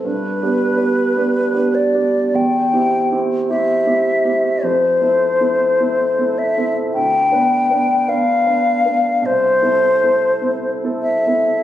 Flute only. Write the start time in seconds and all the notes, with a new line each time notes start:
0.04 B4
1.75 D5
2.35 G5
3.50 E5
4.64 C5
6.38 E5
6.94 G5
8.09 F5
9.26 C5
11.02 E5